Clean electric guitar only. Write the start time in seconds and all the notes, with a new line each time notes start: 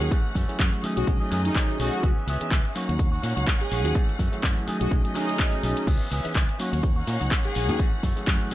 Already playing: A#3 C#4 F#4
0.11 E3 A3 C#4 F#4
0.35 E3 A3 C#4 F#4
0.59 E3 A3 C#4 F#4
0.72 A3 C#4 F#4
0.83 D#3 A3 C#4 G#4
0.96 A3 C#4 G#4
1.20 A3 C#4 G#4
1.31 D#3 A3 C#4 G#4
1.46 A3 C#4
1.55 D#3 A3 C#4 G#4
1.79 D#3 A3 C#4 G#4
2.03 E3 B3 C#4 G#4
2.27 E3 B3 C#4 G#4
2.51 E3 B3 G#4
2.64 B3 C#4 G#4
2.74 A#3 C#4 F#4
2.88 C#4 F#4
3.12 C#4 F#4
3.22 A#3 C#4 F#4
3.36 C#4 F#4
3.46 A#3 C#4 F#4
3.70 A#3 C#4 F#4
3.94 E3 A3 C#4 F#4
4.18 E3 A3 C#4 F#4
4.42 E3 A3 C#4 F#4
4.66 D#3 A3 C#4 G#4
4.79 A3 C#4 G#4
5.04 A3 C#4 G#4
5.14 D#3 A3 C#4 G#4
5.28 A3 C#4 G#4
5.39 D#3 A3 C#4
5.62 D#3 A3 C#4 G#4
5.86 E3 B3 C#4 G#4
6.10 E3 B3 C#4 G#4
6.34 E3 B3 C#4 G#4
6.48 B3 C#4 G#4
6.58 A#3 C#4 F#4
6.72 C#4 F#4
6.96 C#4 F#4
7.06 A#3 C#4 F#4
7.20 C#4 F#4
7.30 A#3 C#4 F#4
7.54 A#3 C#4 F#4
7.78 E3 A3 C#4 F#4
8.02 E3 A3 C#4 F#4
8.26 E3 A3 C#4 F#4
8.50 D#3